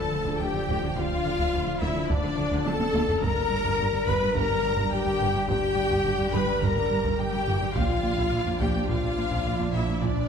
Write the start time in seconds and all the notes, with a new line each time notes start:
Already playing: D1 D3 F3 D4 F4 A4 D5 A5
0.12 D2 D3
0.25 D2 D3, taiko
0.40 D2 D3 G4 G5
0.54 D3, taiko low
0.69 D2 D3
0.83 D2 D3
0.96 D2 D3 F4 F5, taiko
1.11 D2
1.26 D2 D3
1.39 D2 D3, taiko
1.53 D2 D3
1.67 D3, taiko low
1.81 D2 D3 E4 E5, taiko
1.96 D3
2.09 D2 D3 D4 D5, taiko
2.23 D2 D3
2.37 D2 D3
2.51 D2 D3, taiko
2.66 D2 D3 A4 A5, taiko high
2.79 D3, taiko high
2.93 D2 D3, taiko high
3.07 D2 D3, taiko low
3.22 G1 G2 D3 G3 D4 G4 A#4 D5 A#5, taiko
3.35 G2
3.50 G1 G2 G3
3.64 G2, taiko
3.79 G1 G2
3.93 G3, taiko low
4.06 G1 G2 B4 B5, taiko
4.21 G2 G3
4.35 G1 G2 A#4 A#5, taiko
4.49 G2
4.63 G1 G2 G3
4.77 G2, taiko
4.91 G1 G2 G4 G5
5.05 G2 G3, taiko low
5.19 G1 G2
5.34 G2
5.47 G1 G2 G4 G5, taiko
5.61 G2
5.76 G1 G2 G3
5.90 G2, taiko
6.04 G1 G2
6.18 G3, taiko low
6.33 G1 G2 B4 B5, taiko
6.47 G2 G3
6.61 G1 G2 A#4 A#5, taiko
6.76 G2
6.90 G1 G2 G3
7.04 G2, taiko
7.18 G1 G2 G4 G5
7.33 G2 G3, taiko low
7.48 G1 G2
7.61 G2
7.74 A#1 A#2 F3 D4 F4 D5 F5, taiko
7.89 A#2
8.03 A#1 A#2 A#3
8.18 A#2, taiko
8.32 A#1 A#2
8.46 A#3, taiko low
8.60 A#1 A#2 G4 G5, taiko
8.75 A#2 A#3
8.88 A#1 A#2 F4 F5, taiko
9.03 A#2
9.17 A#1 A#2 A#3
9.31 A#2, taiko
9.46 A#1 A#2
9.59 A#2 A#3, taiko low
9.73 A#1 A#2 E4 E5
9.88 A#2
10.01 A#1 A#2 D4 D5, taiko
10.16 A#2